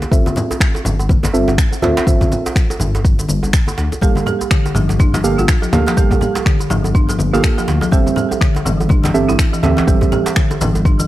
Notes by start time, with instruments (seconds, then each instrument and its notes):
0.02 muted conga, djembe tone, shaker
0.11 detuned saw bass G1, synth stab C4 F4 A4 E5, kick, high conga, shaker
0.26 high conga, djembe tone, shaker
0.36 muted conga, low conga, shaker
0.51 djembe tone, shaker
0.60 finger snap, kick, shaker
0.75 muted conga, djembe tone, shaker
0.85 detuned saw bass G1, low conga, shaker
0.99 djembe tone, shaker
1.09 kick, high conga, shaker
1.23 djembe slap, muted conga, djembe tone, high conga, shaker
1.33 detuned saw bass G1, synth stab C4 F4 A4 E5, shaker
1.48 detuned saw bass G1, djembe tone, shaker
1.58 finger snap, kick, muted conga, shaker
1.72 djembe tone, shaker
1.82 detuned saw bass D2, synth stab C4 F4 A4 E5, djembe slap, high conga, low conga, shaker
1.97 djembe slap, muted conga, djembe tone, shaker
2.07 detuned saw bass G1, synth stab C4 F4 A4 E5, kick, high conga, shaker
2.21 kick, djembe tone, high conga, shaker
2.32 muted conga, low conga, shaker
2.46 djembe slap, djembe tone, shaker
2.56 finger snap, kick, shaker
2.70 muted conga, djembe tone, shaker
2.80 detuned saw bass G1, low conga, shaker
2.95 djembe tone, shaker
3.05 kick, shaker
3.19 muted conga, djembe tone, shaker
3.29 detuned saw bass G1, high conga, shaker
3.43 detuned saw bass G1, djembe tone, shaker
3.53 finger snap, kick, muted conga, shaker
3.67 high conga, djembe tone, shaker
3.78 detuned saw bass D2, djembe slap, shaker
3.92 muted conga, djembe tone, shaker
4.01 detuned saw bass G1, marimba G3, synth stab A#3 G4 A4 F5, kick, high conga, shaker
4.15 high conga, djembe tone, shaker
4.26 marimba G4, muted conga, low conga, shaker
4.41 djembe tone, shaker
4.51 marimba D3, finger snap, kick, shaker
4.66 muted conga, djembe tone, shaker
4.75 detuned saw bass G1, marimba F3, low conga, shaker
4.89 djembe tone, shaker
4.99 marimba D4, kick, high conga, shaker
5.14 marimba F3, muted conga, djembe slap, djembe tone, high conga, shaker
5.24 detuned saw bass G1, synth stab A#3 G4 A4 F5, shaker
5.38 detuned saw bass G1, marimba F4, djembe tone, shaker
5.48 finger snap, kick, muted conga, shaker
5.62 marimba F3, djembe tone, shaker
5.73 detuned saw bass D2, synth stab A#3 G4 A4 F5, djembe slap, high conga, low conga, shaker
5.86 marimba F3, muted conga, djembe slap, djembe tone, shaker
5.97 detuned saw bass G1, marimba G3, synth stab A#3 G4 A4 F5, kick, high conga, shaker
6.11 kick, high conga, djembe tone, shaker
6.21 marimba G4, muted conga, low conga, shaker
6.35 djembe slap, djembe tone, shaker
6.46 marimba D3, finger snap, kick, shaker
6.59 muted conga, djembe tone, shaker
6.70 detuned saw bass G1, marimba F3, low conga, shaker
6.84 djembe tone, shaker
6.95 marimba D4, kick, shaker
7.09 marimba F3, muted conga, djembe tone, shaker
7.19 detuned saw bass G1, high conga, shaker
7.33 detuned saw bass G1, synth stab A#3 G4 A4 F5, marimba F4, djembe tone, shaker
7.43 finger snap, kick, muted conga, shaker
7.58 marimba F3, djembe tone, shaker
7.68 detuned saw bass D2, djembe slap, shaker
7.81 marimba F3, muted conga, djembe tone, shaker
7.91 detuned saw bass G1, marimba G3, synth stab C4 G4 A4 E5, kick, high conga, shaker
8.06 djembe tone, high conga, shaker
8.16 marimba G4, muted conga, low conga, shaker
8.31 djembe tone, shaker
8.41 marimba D3, finger snap, kick, shaker
8.55 muted conga, djembe tone, shaker
8.65 detuned saw bass G1, marimba E3, low conga, shaker
8.80 djembe tone, shaker
8.89 marimba D4, kick, high conga, shaker
9.03 marimba E3, muted conga, djembe slap, high conga, djembe tone, shaker
9.14 detuned saw bass G1, synth stab C4 G4 A4 E5, shaker
9.29 detuned saw bass G1, marimba E4, djembe tone, shaker
9.39 finger snap, kick, muted conga, shaker
9.53 marimba E3, djembe tone, shaker
9.63 detuned saw bass D2, synth stab C4 G4 A4 E5, djembe slap, high conga, low conga, shaker
9.77 marimba E3, muted conga, djembe slap, djembe tone, shaker
9.87 detuned saw bass G1, marimba G3, synth stab C4 G4 A4 E5, kick, high conga, shaker
10.01 kick, high conga, djembe tone, shaker
10.12 marimba G4, muted conga, low conga, shaker
10.26 djembe slap, djembe tone, shaker
10.36 marimba D3, finger snap, kick, shaker
10.51 muted conga, djembe tone, shaker
10.61 detuned saw bass G1, marimba E3, low conga, shaker
10.75 djembe tone, shaker
10.85 marimba D4, kick, shaker
10.99 marimba E3, muted conga, djembe tone, shaker